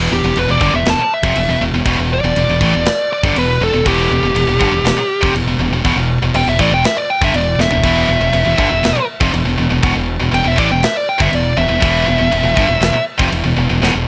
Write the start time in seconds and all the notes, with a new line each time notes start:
Already playing: E2 B2 E3
0.12 E2 B2 G4
0.24 E1 E2 B2
0.36 E1 E2 B2 B4, crash
0.49 E1 E2 B2 D5
0.61 G1 G2 D3, kick
0.74 E1 E2 B2 E5
0.85 E1 E2 B2, snare, crash
0.90 A5
0.99 muted fingered electric bass stroke, muted distorted electric guitar stroke
1.14 E5
1.23 F1 F2 C3, kick
1.36 E1 E2 B2, crash
1.49 E1 E2 B2
1.61 E1 E2 B2
1.74 E1 E2 B2
1.85 E1 E2 B2, kick, crash
1.99 E1 E2 B2
2.14 D5
2.24 E1 E2 B2
2.36 E1 E2 B2, crash
2.49 E1 E2 B2
2.61 A1 A2 E3, kick
2.75 E1 E2 B2
2.85 snare, crash
3.13 D5
3.23 G1 G2 D3, kick
3.36 E1 E2 B2 B4, crash
3.61 E1 E2 B2 A4
3.74 E1 E2 B2
3.86 E1 E2 B2 E3 G4, kick, crash
4.11 E1 E2 B2
4.23 E1 E2 B2
4.35 E1 E2 B2, crash
4.47 E2 B2
4.59 G1 G2 D3, kick
4.72 E1 E2 B2
4.84 E1 E2 B2, snare, crash
4.97 muted distorted electric guitar stroke
5.21 F1 F2 C3, kick
5.34 E1 E2 B2, crash
5.47 E1 E2 B2
5.59 E1 E2 B2
5.72 E1 E2 B2
5.85 E1 E2 B2, kick, crash
5.96 E1 E2 B2
6.22 E1 E2 B2
6.34 E1 E2 B2 G5, crash
6.47 E1 E2 B2 E5
6.59 A1 A2 E3 D5, kick
6.71 E1 E2 B2 G5
6.84 E5, snare, crash
6.97 D5
7.10 G5
7.21 G1 G2 D3 E5, kick
7.33 E1 E2 B2 D5, crash
7.59 E1 E2 B2 E5, snare
7.71 E1 E2 B2, floor tom
7.83 E1 E2 B2 E3, kick, crash
8.09 E1 E2 B2
8.21 E1 E2 B2
8.33 E1 E2 B2, crash
8.45 E1 E2 B2
8.57 G1 G2 D3, kick
8.70 E1 E2 B2
8.83 E1 E2 B2, snare, crash
8.95 muted distorted electric guitar stroke, muted fingered electric bass stroke
9.20 F1 F2 C3, kick
9.33 E1 E2 B2, crash
9.45 E1 E2 B2
9.58 E1 E2 B2
9.70 E1 E2 B2
9.82 E1 E2 B2, kick, crash
9.94 E1 E2 B2
10.20 E1 E2 B2
10.32 E1 E2 B2 G5, crash
10.44 E1 E2 B2 E5
10.56 A1 A2 E3 D5, kick
10.69 E1 E2 B2 G5
10.83 E5, snare, crash
10.97 D5
11.09 G5
11.18 G1 G2 D3 E5, kick
11.31 E1 E2 B2 D5, crash
11.57 E1 E2 B2 E5
11.69 E1 E2 B2
11.80 E1 E2 B2 E3, kick, crash
12.06 E1 E2 B2
12.18 E1 E2 B2
12.31 E1 E2 B2, crash
12.43 E1 E2 B2
12.56 G1 G2 D3, kick
12.68 E1 E2 B2
12.81 E1 E2 B2, snare, crash
12.93 muted distorted electric guitar stroke, muted fingered electric bass stroke
13.18 F1 F2 C3, kick
13.30 E1 E2 B2, crash
13.44 E1 E2 B2
13.56 E1 E2 B2
13.70 E1 E2 B2
13.82 E1 E2 B2, snare
13.94 E1 E2 B2